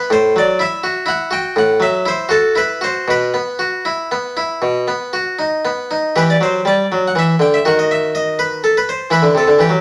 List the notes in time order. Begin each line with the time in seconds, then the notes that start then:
Already playing: B3
0.10 A2 C5
0.36 F#3 D5
0.59 E4 E5
0.83 F#4
1.06 E4 F#5
1.31 F#4 G5
1.56 A2 F#5
1.80 F#3 E5
2.06 E4 C5
2.29 F#4 A4
2.55 E4 B4
2.81 F#4 C5
3.08 B2 B4
3.34 B3
3.59 F#4
3.85 E4
4.11 B3
4.37 E4
4.62 B2
4.88 B3
5.13 F#4
5.39 D#4
5.65 B3
5.91 D#4
6.16 E3 G4 B4
6.30 D5
6.41 F#3 C5
6.65 G3 D5
6.92 F#3
7.08 F#5
7.15 E3 E5
7.39 D3 G5
7.54 E5
7.65 D#3 F#4 F#5
7.79 D#5
7.91 E5
8.15 D#5
8.39 B4
8.64 A4
8.77 B4
8.89 C5
9.10 E3 E4 B4
9.22 D3
9.35 C3 A4
9.47 D3
9.59 E3 G4
9.69 F#3